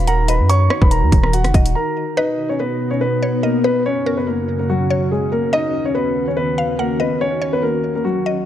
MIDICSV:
0, 0, Header, 1, 6, 480
1, 0, Start_track
1, 0, Key_signature, -6, "minor"
1, 0, Tempo, 419580
1, 566, Time_signature, 4, 2, 24, 8
1, 9673, End_track
2, 0, Start_track
2, 0, Title_t, "Synth pluck"
2, 0, Program_c, 0, 84
2, 86, Note_on_c, 0, 78, 83
2, 314, Note_off_c, 0, 78, 0
2, 326, Note_on_c, 0, 75, 78
2, 554, Note_off_c, 0, 75, 0
2, 804, Note_on_c, 0, 73, 82
2, 1719, Note_off_c, 0, 73, 0
2, 1769, Note_on_c, 0, 75, 78
2, 1996, Note_off_c, 0, 75, 0
2, 2485, Note_on_c, 0, 71, 115
2, 2937, Note_off_c, 0, 71, 0
2, 3690, Note_on_c, 0, 73, 83
2, 3916, Note_off_c, 0, 73, 0
2, 3927, Note_on_c, 0, 75, 83
2, 4155, Note_off_c, 0, 75, 0
2, 4168, Note_on_c, 0, 71, 87
2, 4395, Note_off_c, 0, 71, 0
2, 4649, Note_on_c, 0, 70, 85
2, 5562, Note_off_c, 0, 70, 0
2, 5611, Note_on_c, 0, 73, 88
2, 6286, Note_off_c, 0, 73, 0
2, 6324, Note_on_c, 0, 75, 100
2, 6777, Note_off_c, 0, 75, 0
2, 7528, Note_on_c, 0, 77, 84
2, 7755, Note_off_c, 0, 77, 0
2, 7769, Note_on_c, 0, 78, 83
2, 7996, Note_off_c, 0, 78, 0
2, 8005, Note_on_c, 0, 75, 75
2, 8234, Note_off_c, 0, 75, 0
2, 8483, Note_on_c, 0, 73, 83
2, 9399, Note_off_c, 0, 73, 0
2, 9450, Note_on_c, 0, 75, 76
2, 9673, Note_off_c, 0, 75, 0
2, 9673, End_track
3, 0, Start_track
3, 0, Title_t, "Grand piano"
3, 0, Program_c, 1, 0
3, 84, Note_on_c, 1, 82, 93
3, 94, Note_on_c, 1, 70, 72
3, 289, Note_off_c, 1, 82, 0
3, 294, Note_off_c, 1, 70, 0
3, 327, Note_on_c, 1, 83, 80
3, 336, Note_on_c, 1, 71, 61
3, 530, Note_off_c, 1, 83, 0
3, 535, Note_off_c, 1, 71, 0
3, 566, Note_on_c, 1, 85, 105
3, 575, Note_on_c, 1, 73, 81
3, 912, Note_off_c, 1, 85, 0
3, 916, Note_off_c, 1, 73, 0
3, 933, Note_on_c, 1, 83, 86
3, 942, Note_on_c, 1, 71, 63
3, 1029, Note_off_c, 1, 83, 0
3, 1034, Note_off_c, 1, 71, 0
3, 1041, Note_on_c, 1, 82, 94
3, 1050, Note_on_c, 1, 70, 63
3, 1389, Note_off_c, 1, 82, 0
3, 1394, Note_off_c, 1, 70, 0
3, 1414, Note_on_c, 1, 82, 79
3, 1424, Note_on_c, 1, 70, 64
3, 1510, Note_off_c, 1, 82, 0
3, 1515, Note_off_c, 1, 70, 0
3, 1527, Note_on_c, 1, 78, 80
3, 1535, Note_on_c, 1, 66, 60
3, 1978, Note_off_c, 1, 78, 0
3, 1982, Note_off_c, 1, 66, 0
3, 2006, Note_on_c, 1, 82, 86
3, 2015, Note_on_c, 1, 70, 71
3, 2458, Note_off_c, 1, 82, 0
3, 2462, Note_off_c, 1, 70, 0
3, 2487, Note_on_c, 1, 75, 87
3, 2497, Note_on_c, 1, 63, 74
3, 2832, Note_off_c, 1, 75, 0
3, 2837, Note_off_c, 1, 63, 0
3, 2852, Note_on_c, 1, 73, 72
3, 2861, Note_on_c, 1, 61, 56
3, 2948, Note_off_c, 1, 73, 0
3, 2954, Note_off_c, 1, 61, 0
3, 2971, Note_on_c, 1, 71, 80
3, 2980, Note_on_c, 1, 59, 73
3, 3314, Note_off_c, 1, 71, 0
3, 3319, Note_off_c, 1, 59, 0
3, 3325, Note_on_c, 1, 73, 79
3, 3334, Note_on_c, 1, 61, 60
3, 3424, Note_off_c, 1, 73, 0
3, 3430, Note_off_c, 1, 61, 0
3, 3444, Note_on_c, 1, 71, 89
3, 3454, Note_on_c, 1, 59, 65
3, 3896, Note_off_c, 1, 71, 0
3, 3902, Note_off_c, 1, 59, 0
3, 3920, Note_on_c, 1, 70, 84
3, 3929, Note_on_c, 1, 58, 62
3, 4126, Note_off_c, 1, 70, 0
3, 4131, Note_off_c, 1, 58, 0
3, 4168, Note_on_c, 1, 71, 89
3, 4178, Note_on_c, 1, 59, 62
3, 4371, Note_off_c, 1, 71, 0
3, 4376, Note_off_c, 1, 59, 0
3, 4413, Note_on_c, 1, 73, 95
3, 4422, Note_on_c, 1, 61, 75
3, 4755, Note_off_c, 1, 73, 0
3, 4760, Note_off_c, 1, 61, 0
3, 4774, Note_on_c, 1, 71, 80
3, 4783, Note_on_c, 1, 59, 58
3, 4870, Note_off_c, 1, 71, 0
3, 4875, Note_off_c, 1, 59, 0
3, 4884, Note_on_c, 1, 70, 77
3, 4893, Note_on_c, 1, 58, 62
3, 5230, Note_off_c, 1, 70, 0
3, 5235, Note_off_c, 1, 58, 0
3, 5254, Note_on_c, 1, 70, 75
3, 5263, Note_on_c, 1, 58, 59
3, 5349, Note_off_c, 1, 70, 0
3, 5355, Note_off_c, 1, 58, 0
3, 5373, Note_on_c, 1, 66, 84
3, 5382, Note_on_c, 1, 54, 69
3, 5821, Note_off_c, 1, 66, 0
3, 5826, Note_off_c, 1, 54, 0
3, 5851, Note_on_c, 1, 68, 79
3, 5859, Note_on_c, 1, 56, 59
3, 6052, Note_off_c, 1, 68, 0
3, 6057, Note_off_c, 1, 56, 0
3, 6083, Note_on_c, 1, 70, 84
3, 6094, Note_on_c, 1, 58, 67
3, 6288, Note_off_c, 1, 70, 0
3, 6294, Note_off_c, 1, 58, 0
3, 6332, Note_on_c, 1, 75, 110
3, 6342, Note_on_c, 1, 63, 78
3, 6675, Note_off_c, 1, 75, 0
3, 6680, Note_off_c, 1, 63, 0
3, 6696, Note_on_c, 1, 73, 76
3, 6706, Note_on_c, 1, 61, 57
3, 6791, Note_off_c, 1, 73, 0
3, 6796, Note_off_c, 1, 61, 0
3, 6803, Note_on_c, 1, 71, 82
3, 6812, Note_on_c, 1, 59, 62
3, 7150, Note_off_c, 1, 71, 0
3, 7155, Note_off_c, 1, 59, 0
3, 7180, Note_on_c, 1, 73, 72
3, 7190, Note_on_c, 1, 61, 62
3, 7273, Note_off_c, 1, 73, 0
3, 7278, Note_off_c, 1, 61, 0
3, 7283, Note_on_c, 1, 71, 91
3, 7292, Note_on_c, 1, 59, 62
3, 7736, Note_off_c, 1, 71, 0
3, 7741, Note_off_c, 1, 59, 0
3, 7766, Note_on_c, 1, 70, 90
3, 7775, Note_on_c, 1, 58, 66
3, 7969, Note_off_c, 1, 70, 0
3, 7975, Note_off_c, 1, 58, 0
3, 8011, Note_on_c, 1, 71, 75
3, 8020, Note_on_c, 1, 59, 60
3, 8213, Note_off_c, 1, 71, 0
3, 8218, Note_off_c, 1, 59, 0
3, 8248, Note_on_c, 1, 73, 98
3, 8257, Note_on_c, 1, 61, 77
3, 8593, Note_off_c, 1, 73, 0
3, 8598, Note_off_c, 1, 61, 0
3, 8615, Note_on_c, 1, 71, 80
3, 8624, Note_on_c, 1, 59, 61
3, 8710, Note_off_c, 1, 71, 0
3, 8715, Note_off_c, 1, 59, 0
3, 8721, Note_on_c, 1, 70, 86
3, 8731, Note_on_c, 1, 58, 60
3, 9069, Note_off_c, 1, 70, 0
3, 9074, Note_off_c, 1, 58, 0
3, 9098, Note_on_c, 1, 70, 76
3, 9107, Note_on_c, 1, 58, 61
3, 9192, Note_off_c, 1, 70, 0
3, 9197, Note_off_c, 1, 58, 0
3, 9206, Note_on_c, 1, 66, 77
3, 9215, Note_on_c, 1, 54, 58
3, 9658, Note_off_c, 1, 66, 0
3, 9662, Note_off_c, 1, 54, 0
3, 9673, End_track
4, 0, Start_track
4, 0, Title_t, "Ambient pad"
4, 0, Program_c, 2, 92
4, 0, Note_on_c, 2, 51, 78
4, 0, Note_on_c, 2, 63, 70
4, 0, Note_on_c, 2, 66, 86
4, 2443, Note_off_c, 2, 66, 0
4, 2448, Note_off_c, 2, 63, 0
4, 2449, Note_off_c, 2, 51, 0
4, 2485, Note_on_c, 2, 47, 75
4, 2485, Note_on_c, 2, 63, 70
4, 2486, Note_on_c, 2, 66, 81
4, 2487, Note_on_c, 2, 59, 70
4, 4387, Note_off_c, 2, 47, 0
4, 4387, Note_off_c, 2, 63, 0
4, 4388, Note_off_c, 2, 59, 0
4, 4407, Note_on_c, 2, 42, 75
4, 4407, Note_on_c, 2, 49, 68
4, 4407, Note_on_c, 2, 61, 68
4, 6308, Note_off_c, 2, 42, 0
4, 6308, Note_off_c, 2, 49, 0
4, 6326, Note_on_c, 2, 39, 76
4, 6327, Note_on_c, 2, 51, 71
4, 9673, Note_off_c, 2, 39, 0
4, 9673, Note_off_c, 2, 51, 0
4, 9673, Note_off_c, 2, 61, 0
4, 9673, Note_off_c, 2, 66, 0
4, 9673, End_track
5, 0, Start_track
5, 0, Title_t, "808-style bass"
5, 0, Program_c, 3, 38
5, 0, Note_on_c, 3, 27, 110
5, 454, Note_on_c, 3, 42, 101
5, 471, Note_off_c, 3, 27, 0
5, 789, Note_off_c, 3, 42, 0
5, 934, Note_on_c, 3, 27, 107
5, 1174, Note_on_c, 3, 39, 100
5, 1192, Note_off_c, 3, 27, 0
5, 1278, Note_off_c, 3, 39, 0
5, 1285, Note_on_c, 3, 27, 111
5, 1654, Note_on_c, 3, 29, 97
5, 1671, Note_off_c, 3, 27, 0
5, 1758, Note_off_c, 3, 29, 0
5, 1765, Note_on_c, 3, 27, 118
5, 2006, Note_off_c, 3, 27, 0
5, 9673, End_track
6, 0, Start_track
6, 0, Title_t, "Drums"
6, 86, Note_on_c, 9, 42, 73
6, 200, Note_off_c, 9, 42, 0
6, 325, Note_on_c, 9, 42, 91
6, 439, Note_off_c, 9, 42, 0
6, 566, Note_on_c, 9, 42, 87
6, 680, Note_off_c, 9, 42, 0
6, 805, Note_on_c, 9, 37, 93
6, 920, Note_off_c, 9, 37, 0
6, 934, Note_on_c, 9, 36, 96
6, 1043, Note_on_c, 9, 42, 71
6, 1048, Note_off_c, 9, 36, 0
6, 1158, Note_off_c, 9, 42, 0
6, 1285, Note_on_c, 9, 36, 89
6, 1286, Note_on_c, 9, 42, 77
6, 1399, Note_off_c, 9, 36, 0
6, 1400, Note_off_c, 9, 42, 0
6, 1412, Note_on_c, 9, 37, 71
6, 1526, Note_on_c, 9, 42, 88
6, 1527, Note_off_c, 9, 37, 0
6, 1641, Note_off_c, 9, 42, 0
6, 1652, Note_on_c, 9, 37, 65
6, 1653, Note_on_c, 9, 42, 52
6, 1765, Note_off_c, 9, 42, 0
6, 1765, Note_on_c, 9, 36, 95
6, 1765, Note_on_c, 9, 42, 89
6, 1767, Note_off_c, 9, 37, 0
6, 1880, Note_off_c, 9, 36, 0
6, 1880, Note_off_c, 9, 42, 0
6, 1894, Note_on_c, 9, 42, 85
6, 2009, Note_off_c, 9, 42, 0
6, 9673, End_track
0, 0, End_of_file